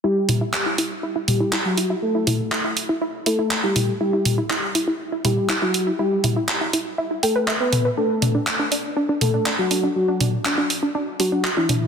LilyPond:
<<
  \new Staff \with { instrumentName = "Analog synth lead" } { \time 4/4 \key e \minor \tempo 4 = 121 g'8. r4. r16 g'8 r16 fis'8 r16 | a'8. r4. r16 a'8 r16 g'8 r16 | g'8. r4. r16 g'8 r16 fis'8 r16 | g'8. r4. r16 a'8 r16 b'8 r16 |
a'8. r4. r16 a'8 r16 fis'8 r16 | fis'8. r4. r16 fis'8 r16 e'8 r16 | }
  \new Staff \with { instrumentName = "Synth pluck" } { \time 4/4 \key e \minor e'16 r16 e'16 e'16 r16 e'16 e'16 r16 e'16 e'16 r16 e'16 e'16 r16 e'16 e'16 | r16 e'16 e'16 r16 e'16 e'16 r16 e'16 e'16 r16 e'16 e'16 r16 e'16 e'16 r16 | e'16 e'16 r16 e'16 e'16 r16 e'16 e'16 r16 e'16 e'16 r16 e'16 e'16 r16 e'16 | e'16 r16 e'16 e'16 r16 e'16 e'16 r16 e'16 e'16 g''16 b'16 e''16 r16 b'16 b'16 |
d'16 r16 d'16 d'16 r16 d'16 d'16 r16 d'16 d'16 r16 d'16 d'16 r16 d'16 d'16 | r16 d'16 d'16 r16 d'16 d'16 r16 d'16 d'16 r16 d'16 d'16 r16 d'16 d'16 r16 | }
  \new DrumStaff \with { instrumentName = "Drums" } \drummode { \time 4/4 r8 <hho toml>8 hc8 hho8 r8 <hho toml>8 hc8 hho8 | r8 <hho toml>8 hc8 hho8 r8 hho8 hc8 <hho toml>8 | r8 <hho toml>8 hc8 hho8 r8 <hho toml>8 hc8 hho8 | r8 <hho toml>8 hc8 hho8 r8 hho8 hc8 <hho toml>8 |
r8 <hho toml>8 hc8 hho8 r8 <hho toml>8 hc8 hho8 | r8 <hho toml>8 hc8 hho8 r8 hho8 hc8 <hho toml>8 | }
>>